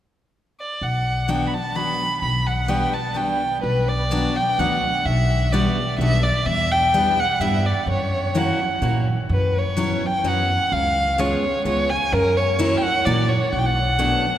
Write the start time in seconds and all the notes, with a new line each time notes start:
0.60 D5
0.81 B1 F#5
1.28 F#3 B3 D4 F#4 G5
1.46 B5
1.53 A5
1.75 F#3 B3 D4 F#4 B5
2.22 B1 B5
2.47 F#5
2.68 G3 B3 D4 F#4 G5
2.93 A5
3.14 G3 B3 D4 F#4 G5
3.63 B1 B4
3.88 D5
4.11 F#3 B3 D4 F#4
4.36 G5
4.58 D2 F#3 B3 D4 F#4 F#5
5.05 B1 E5
5.52 G3 B3 D4 F#4 D5
5.98 B1 G3 B3 D4 F#4 E5
6.23 D5
6.45 E2 E5
6.71 G5
6.94 G3 B3 D4 E4
7.19 F#5
7.40 G2 G3 B3 D4 E4 E5
7.66 D5
7.86 F#2 C#5
8.35 F#3 A#3 C#4 E4 F#5
8.82 A#2 F#3 A#3 C#4 E4
9.29 F#2 B4
9.58 C#5
9.77 F#3 B3 C#4 E4
10.06 G5
10.24 F#2 F#3 B3 C#4 E4 F#5
10.72 C#2 F5
11.18 G#3 B3 C#4 F4 C#5
11.65 C#2 G#3 B3 C#4 F4 C#5
11.90 G#5
12.12 F#2 A#4
12.36 C#5
12.59 F#3 A#3 C#4 E4
12.77 G5
12.82 F#5
13.05 A#2 F#3 A#3 C#4 E4 D5
13.29 C#5
13.53 B1 F#5
13.58 G5
13.66 F#5
13.99 F#3 A3 B3 D4